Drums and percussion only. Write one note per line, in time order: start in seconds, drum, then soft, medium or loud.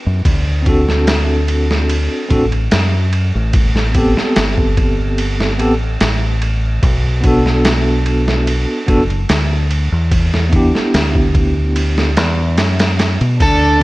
0.25 kick loud
0.25 ride medium
0.66 kick medium
0.66 ride medium
0.88 snare soft
1.07 snare loud
1.07 ride medium
1.48 ride medium
1.71 snare soft
1.89 ride medium
2.30 kick medium
2.30 ride medium
2.52 ride soft
2.71 snare loud
2.71 ride medium
3.13 ride medium
3.53 kick loud
3.53 ride medium
3.76 snare soft
3.95 kick medium
3.95 ride medium
4.17 snare soft
4.36 snare loud
4.36 ride medium
4.58 kick medium
4.77 kick medium
4.77 ride medium
5.18 ride medium
5.40 snare medium
5.59 ride medium
6.01 snare loud
6.01 ride medium
6.42 ride medium
6.83 kick loud
6.83 ride medium
7.24 kick medium
7.24 ride medium
7.46 snare soft
7.65 snare loud
7.65 ride medium
8.06 ride medium
8.28 snare medium
8.47 ride medium
8.88 kick medium
8.88 ride medium
9.10 ride soft
9.29 snare loud
9.29 ride medium
9.71 ride medium
10.11 kick loud
10.11 ride medium
10.34 snare soft
10.53 kick medium
10.53 ride medium
10.75 snare soft
10.94 snare loud
10.94 ride medium
11.15 kick medium
11.35 kick medium
11.35 ride medium
11.76 ride medium
11.98 snare medium
12.17 snare loud
12.17 ride medium
12.58 snare medium
12.58 ride medium
12.79 snare medium
12.79 ride medium
12.99 snare medium
12.99 ride medium
13.21 ride medium
13.40 kick loud
13.40 ride medium